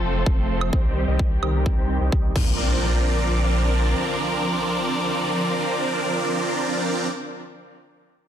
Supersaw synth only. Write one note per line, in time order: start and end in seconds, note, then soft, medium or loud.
0.00 0.23 F3 medium
0.00 0.23 A3 medium
0.00 0.23 C4 medium
0.00 0.23 A4 medium
0.00 0.23 C5 medium
0.26 0.70 F3 medium
0.26 0.70 A3 medium
0.26 0.70 C4 medium
0.26 0.70 A4 medium
0.26 0.70 C5 loud
0.73 1.05 D#3 medium
0.73 1.05 G3 medium
0.73 1.05 C4 medium
0.73 1.05 G4 medium
0.73 1.05 C5 loud
1.08 1.26 D#3 medium
1.08 1.26 G3 medium
1.08 1.26 C4 medium
1.08 1.26 G4 medium
1.08 1.26 D#5 loud
1.43 1.75 D#3 medium
1.43 1.75 G3 medium
1.43 1.75 C4 medium
1.43 1.75 G4 medium
1.43 1.75 A#4 loud
1.77 1.98 D#3 medium
1.77 1.98 G3 medium
1.77 1.98 C4 medium
1.77 1.98 G4 medium
1.77 1.98 C5 medium
2.01 2.10 D#3 medium
2.01 2.10 G3 medium
2.01 2.10 C4 medium
2.01 2.10 G4 medium
2.01 2.10 D#5 medium
2.12 2.31 D#3 medium
2.12 2.31 G3 medium
2.12 2.31 C4 medium
2.12 2.31 G4 medium
2.12 2.31 D#5 medium
2.35 7.07 F3 medium
2.35 7.07 C4 medium
2.35 7.07 D4 medium
2.35 7.07 A#4 medium
2.35 7.07 D5 medium